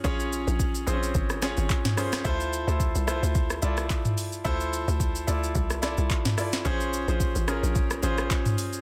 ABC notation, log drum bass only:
X:1
M:4/4
L:1/16
Q:"Swing 16ths" 1/4=109
K:Dm
V:1 name="Log drum bass" clef=bass
B,,,3 B,,,3 B,,,2 _A,,,3 A,,, z4 | D,,3 D,,2 C,,2 D,,3 C,,2 z4 | D,,3 D,,3 D,,2 C,,3 C,, z4 | B,,,3 B,,,2 A,,,2 B,,,3 A,,,2 z4 |]